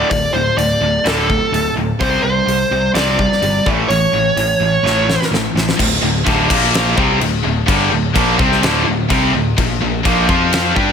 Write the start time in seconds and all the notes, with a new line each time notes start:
0.10 D1 D2 A2 D5, kick, open hi-hat
0.34 D1 D2 A2 C5
0.57 D1 D2 A2 D5, open hi-hat
0.81 D1 D2 A2
1.04 D1 D2 A2 D3 A4, snare, open hi-hat
1.28 D2 A2, kick
1.52 D1 D2 A2, open hi-hat
1.76 D1 D2 A2
2.00 C2 C3 G3 C4 C5, kick, open hi-hat
2.23 C2 C3 G3 C5
2.47 C2 C3 G3, open hi-hat
2.71 C2 C3 G3
2.94 C2 C3 G3 C4 D5, snare, open hi-hat
3.18 C3 G3, kick
3.32 snare
3.42 G1 C3 G3, open hi-hat
3.66 A1 A2 E3 A3, kick
3.88 A1 A2 E3 C#5, open hi-hat
4.13 A1 A2 E3
4.36 A1 A2 E3, open hi-hat
4.60 A1 A2 E3
4.83 A1 A2 E3 A3, snare
5.08 A2 E3, snare
5.22 snare
5.31 A1 A2 E3, snare
5.54 A1 A2 E3, snare
5.69 snare
5.79 D1 D2 A2, kick, crash
6.01 D1 D2 A2
6.26 D2 A2 D3, kick, crash
6.49 A#1 A#2 F3 A#3, kick, crash
6.64 snare
6.74 snare, crash
6.97 C2 C3 G3 C4, kick
7.20 D1 D2 A2, crash
7.44 D1 D2 A2
7.68 G1 G2 D3 G3, kick, crash
7.92 D1 D2 A2
8.15 A#1 A#2 F3 A#3, kick, crash
8.38 C2 C3 G3 C4, kick
8.52 snare
8.62 D1 D2 A2 D3, snare, crash
8.86 D1 D2 A2
9.09 C2 C3 G3 C4, kick, crash
9.33 D1 D2 A2
9.57 A#1 A#2 F3, kick, crash
9.82 A#1 A#2 F3
10.04 A#1 A#2 F3 A#3, kick, crash
10.28 F2 F3 C4 F4, kick
10.53 snare, crash
10.75 G2 G3 D4 G4, kick